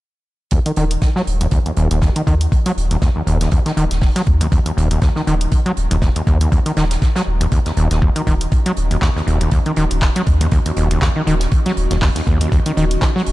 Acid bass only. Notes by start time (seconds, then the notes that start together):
0.52 D#2
0.66 D#3
0.77 D#3
1.16 F#3
1.41 D#2
1.52 D#2
1.66 D#2
1.77 D#2
1.91 D#2
2.02 D#2
2.16 D#3
2.27 D#3
2.66 F#3
2.91 D#2
3.02 D#2
3.16 D#2
3.27 D#2
3.41 D#2
3.52 D#2
3.66 D#3
3.77 D#3
4.16 F#3
4.41 D#2
4.52 D#2
4.66 D#2
4.77 D#2
4.91 D#2
5.02 D#2
5.16 D#3
5.27 D#3
5.66 F#3
5.91 D#2
6.02 D#2
6.16 D#2
6.27 D#2
6.41 D#2
6.52 D#2
6.66 D#3
6.77 D#3
7.16 F#3
7.41 D#2
7.52 D#2
7.66 D#2
7.77 D#2
7.91 D#2
8.02 D#2
8.16 D#3
8.27 D#3
8.66 F#3
8.91 D#2
9.02 D#2
9.16 D#2
9.27 D#2
9.41 D#2
9.52 D#2
9.66 D#3
9.77 D#3
10.16 F#3
10.41 D#2
10.52 D#2
10.66 D#2
10.77 D#2
10.91 D#2
11.02 D#2
11.16 D#3
11.27 D#3
11.66 F#3
11.91 D#2
12.02 D#2
12.16 D#2
12.27 D#2
12.41 D#2
12.52 D#2
12.66 D#3
12.77 D#3
13.16 F#3